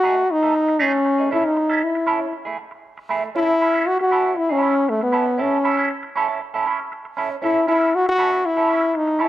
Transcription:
Already playing: trombone F#4
0.03 clean electric guitar A3 D#4 G#4
0.17 muted clean electric guitar stroke
0.29 trombone D#4, muted clean electric guitar stroke
0.43 clean electric guitar A3 D#4 A4
0.55 muted clean electric guitar stroke
0.68 muted clean electric guitar stroke
0.79 clean electric guitar A3 D#4 G#4, trombone C#4
0.93 muted clean electric guitar stroke
1.05 muted clean electric guitar stroke
1.18 clean electric guitar A3 D#4 G#4
1.31 clean electric guitar C#4 E4 A4, trombone E4
1.45 trombone D#4, muted clean electric guitar stroke
1.56 muted clean electric guitar stroke
1.70 clean electric guitar C#4 E4 A4
1.82 trombone E4, muted clean electric guitar stroke
1.95 muted clean electric guitar stroke
2.06 clean electric guitar C#4 E4 A4
2.21 muted clean electric guitar stroke
2.32 muted clean electric guitar stroke
2.45 clean electric guitar A3 E4 G#4
2.58 muted clean electric guitar stroke
2.71 muted clean electric guitar stroke
2.98 muted clean electric guitar stroke
3.09 clean electric guitar A3 E4 G#4
3.24 muted clean electric guitar stroke
3.35 clean electric guitar C#4 E4 A4, trombone E4
3.61 clean electric guitar C#4 E4 A4
3.74 clean electric guitar C#4 E4 A4
3.86 trombone F#4, muted clean electric guitar stroke
4.00 trombone F#4, muted clean electric guitar stroke
4.11 clean electric guitar C#4 E4 A4
4.25 clean electric guitar C#4 E4 A4
4.36 trombone E4, muted clean electric guitar stroke
4.49 clean electric guitar C#4 E4 A4, trombone C#4
4.61 clean electric guitar C#4 E4 A4
4.75 muted clean electric guitar stroke
4.88 trombone A3, muted clean electric guitar stroke
5.01 trombone B3, muted clean electric guitar stroke
5.12 clean electric guitar C#4 E4 A4
5.26 muted clean electric guitar stroke
5.38 clean electric guitar C#4 E4 A4, trombone C#4
5.64 clean electric guitar C#4 E4 A4
5.77 clean electric guitar C#4 E4 A4
5.89 muted clean electric guitar stroke
6.03 muted clean electric guitar stroke
6.16 clean electric guitar C#4 E4 A4
6.28 clean electric guitar C#4 E4 A4
6.41 muted clean electric guitar stroke
6.54 clean electric guitar C#4 E4 A4
6.66 clean electric guitar C#4 E4 A4
6.79 muted clean electric guitar stroke
6.92 muted clean electric guitar stroke
7.05 muted clean electric guitar stroke
7.17 clean electric guitar C#4 E4 A4
7.30 muted clean electric guitar stroke
7.42 clean electric guitar C#4 E4 A4, trombone E4
7.67 clean electric guitar C#4 E4 A4, trombone E4
7.81 clean electric guitar C#4 E4 A4
7.92 trombone F#4, muted clean electric guitar stroke
8.06 trombone F#4, muted clean electric guitar stroke
8.18 clean electric guitar C#4 E4 A4
8.31 clean electric guitar C#4 E4 A4
8.44 trombone E4, muted clean electric guitar stroke
8.57 clean electric guitar C#4 E4 A4
8.69 clean electric guitar C#4 E4 A4
8.82 muted clean electric guitar stroke
8.94 trombone D#4, muted clean electric guitar stroke
9.07 muted clean electric guitar stroke
9.19 clean electric guitar C#4 E4 A4, trombone E4

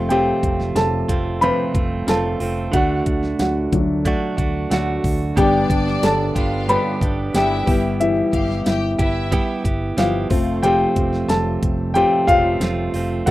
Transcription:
Already playing: fingered electric bass F1, grand piano F3 A3 C4 G4 F5, clean electric guitar A3 C4 F4
0.09 clean electric guitar F2 C3 F3 A3 C4 F4, grand piano G4 G5, closed hi-hat
0.43 fingered electric bass F1, kick, closed hi-hat
0.60 snare
0.75 fingered electric bass F1, grand piano A4 A5, snare, closed hi-hat
1.08 fingered electric bass F1, clean electric guitar F3 A3 C4 F4, kick, closed hi-hat
1.41 clean electric guitar F2 C3 F3 A3 C4 F4, grand piano B4 B5, closed hi-hat
1.74 fingered electric bass F1, clean electric guitar F3 A3 C4 F4, kick, closed hi-hat
2.07 fingered electric bass F1, clean electric guitar F3 A3 C4 F4, grand piano A4 A5, snare, closed hi-hat
2.40 fingered electric bass F1, clean electric guitar F3 A3 C4 F4, open hi-hat
2.72 fingered electric bass D2, clean electric guitar D3 A3 D4, grand piano F#4 F#5, kick, closed hi-hat
2.77 clean electric guitar F#4
3.06 fingered electric bass D2, kick, closed hi-hat
3.23 snare
3.39 fingered electric bass D2, grand piano F#4 F#5, snare, closed hi-hat
3.72 fingered electric bass D2, grand piano F#3 A3 D4, kick, closed hi-hat
4.05 clean electric guitar D3 A3 D4 F#4, kick, closed hi-hat
4.37 fingered electric bass D2, clean electric guitar A3 D4 F#4, kick, closed hi-hat
4.70 fingered electric bass D2, clean electric guitar D3 A3 D4 F#4, grand piano F#4 F#5, snare, closed hi-hat
5.04 fingered electric bass D2, kick, open hi-hat
5.36 fingered electric bass G1, clean electric guitar G2 D3 G3 B3 D4 G4, grand piano G3 B3 D4 G4 G5, violin section D4 D5, kick, closed hi-hat
5.70 fingered electric bass G1, kick, closed hi-hat
5.87 snare
6.02 fingered electric bass G1, grand piano A4 A5, snare, closed hi-hat
6.35 fingered electric bass G1, clean electric guitar G3 B3 D4 G4, violin section F4 F5, kick, closed hi-hat
6.68 clean electric guitar G2 D3 G3 B3 D4 G4, grand piano B4 B5, closed hi-hat
7.01 fingered electric bass G1, clean electric guitar G3 B3 D4 G4, kick, closed hi-hat
7.34 fingered electric bass G1, clean electric guitar G3 B3 D4 G4, violin section E4 E5, grand piano G4 G5, snare, closed hi-hat
7.66 fingered electric bass G1, grand piano G3 B3 E4, clean electric guitar B3 E4 G4, kick, open hi-hat
7.72 clean electric guitar G3
8.00 grand piano E3 E5, closed hi-hat
8.33 fingered electric bass G1, violin section G4 F5, kick, closed hi-hat
8.50 snare
8.66 fingered electric bass G1, grand piano E4 E5, violin section G4 G5, snare, closed hi-hat
8.99 fingered electric bass G1, clean electric guitar B3 E4 G4, violin section E4 E5, kick, closed hi-hat
9.31 clean electric guitar G3 B3 E4 G4, kick, closed hi-hat
9.64 fingered electric bass G1, clean electric guitar B3 E4 G4, kick, closed hi-hat
9.97 fingered electric bass G1, grand piano F3 F5, clean electric guitar G3 B3 E4 G4, snare, closed hi-hat
10.30 fingered electric bass F1, clean electric guitar F3 A3 C4 F4, grand piano A3 C4 F4, kick, open hi-hat
10.62 clean electric guitar F2 C3 F3 A3, grand piano G4 G5, closed hi-hat
10.66 clean electric guitar C4 F4
10.96 fingered electric bass F1, kick, closed hi-hat
11.13 snare
11.28 fingered electric bass F1, grand piano A4 A5, snare, closed hi-hat
11.62 fingered electric bass F1, kick, closed hi-hat
11.94 clean electric guitar F2 C3 F3 A3 C4 F4, grand piano G4 G5, closed hi-hat
12.27 fingered electric bass F1, clean electric guitar F3 A3 C4 F4, grand piano F4 F5, kick, closed hi-hat
12.60 fingered electric bass F1, clean electric guitar F3 A3 C4 F4, snare, closed hi-hat
12.94 fingered electric bass F1, clean electric guitar F3 A3 C4 F4, open hi-hat
13.26 fingered electric bass D2, clean electric guitar D3 A3, grand piano A3 D4 F#4 F#5, kick, closed hi-hat

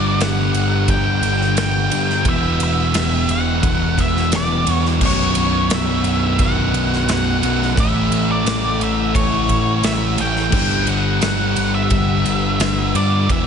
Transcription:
Already playing: picked electric bass G1, distorted electric guitar G2 D3 G3, string machine D3 G3 B3 G4 B4, lead electric guitar D5
0.19 picked electric bass G1, lead electric guitar F#5, snare, ride
0.54 picked electric bass G1, ride
0.88 picked electric bass G1, lead electric guitar G5, kick, ride
1.22 picked electric bass G1, ride
1.41 snare
1.57 picked electric bass G1, lead electric guitar G5, snare, ride
1.90 picked electric bass G2, distorted electric guitar D3 G3, ride
1.94 distorted electric guitar G2
2.10 snare
2.24 picked electric bass E1, distorted electric guitar E2 B2 E3, string machine E4, kick, ride
2.29 lead electric guitar E5
2.60 picked electric bass E1, lead electric guitar E5, ride
2.94 picked electric bass E1, snare, ride
3.29 picked electric bass E1, lead electric guitar F#5, ride
3.63 picked electric bass E1, kick, ride
3.98 picked electric bass E1, lead electric guitar E5, kick, ride
4.16 snare
4.32 picked electric bass E1, snare, ride
4.36 lead electric guitar D5
4.66 picked electric bass E2, distorted electric guitar B2 E3, ride
4.70 distorted electric guitar E2, lead electric guitar C#5
4.85 snare
5.01 picked electric bass B0, distorted electric guitar B1 F#2 B2, string machine F#3 B3 C#4 D4, kick, crash
5.05 lead electric guitar C#5
5.35 picked electric bass B0, ride
5.70 picked electric bass B0, snare, ride
5.75 lead electric guitar E5
6.04 picked electric bass B0, ride
6.39 picked electric bass B0, lead electric guitar F#5, kick, ride
6.73 picked electric bass B0, ride
6.93 snare
7.07 picked electric bass B0, lead electric guitar F#5, snare, ride
7.42 picked electric bass B1, distorted electric guitar F#2 B2, ride
7.46 distorted electric guitar B1
7.62 snare
7.76 picked electric bass A1, distorted electric guitar A2 E3, string machine C#3 E3 A3 E4 A4, lead electric guitar E5, kick, ride
7.81 distorted electric guitar A3
8.11 picked electric bass A1, ride
8.31 lead electric guitar D5
8.45 picked electric bass A1, snare, ride
8.79 picked electric bass A1, ride
8.83 lead electric guitar E5
9.15 picked electric bass A1, lead electric guitar C#5, kick, ride
9.49 picked electric bass A1, kick, ride
9.83 picked electric bass A1, lead electric guitar E5, snare, ride
10.17 picked electric bass A1, distorted electric guitar E3 A3, lead electric guitar G5, ride
10.22 distorted electric guitar A2
10.36 snare
10.51 picked electric bass G1, distorted electric guitar G2 D3 G3, string machine D3 G3 B3 G4 B4, kick, crash
10.87 picked electric bass G1, lead electric guitar F#5, ride
11.21 picked electric bass G1, snare, ride
11.56 picked electric bass G1, ride
11.75 lead electric guitar E5
11.90 picked electric bass G1, kick, ride
12.25 picked electric bass G1, ride
12.59 picked electric bass G1, snare, ride
12.94 picked electric bass G2, distorted electric guitar G2 D3 G3, lead electric guitar D5, ride
13.27 picked electric bass E1, distorted electric guitar E2 B2, string machine E4, kick, ride
13.32 distorted electric guitar E3, lead electric guitar E5

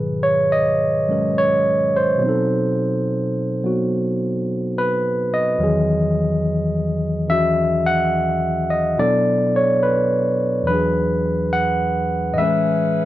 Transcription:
Already playing: tine electric piano G#2 B2 D#3 F#3 G#4 B4
0.23 tine electric piano C#5
0.52 tine electric piano D#5
1.08 tine electric piano F#3 G#3 C#4 A#4
1.38 tine electric piano C#5
1.96 tine electric piano C5
2.18 tine electric piano B2 F#3
2.23 tine electric piano C4 D#4
2.29 tine electric piano A4
3.64 tine electric piano F#3 B3 F#4
4.78 tine electric piano B4
5.34 tine electric piano D#5
5.58 tine electric piano E2 E3 F#3
5.62 tine electric piano D#3 G#4
7.28 tine electric piano E3 C#4 F#4 E5
7.86 tine electric piano F#5
8.70 tine electric piano D#5
8.98 tine electric piano B2 F#3 B3 D4 E4 A4 D5
9.56 tine electric piano C#5
9.83 tine electric piano B4
10.62 tine electric piano E2 E3
10.67 tine electric piano F#3 D4 B4
10.73 tine electric piano G#4
11.53 tine electric piano F#5
12.33 tine electric piano A2 E3 D#5, saxophone section C#4 G#4 B4
12.38 tine electric piano G#3 C#4 E5
12.44 tine electric piano B4

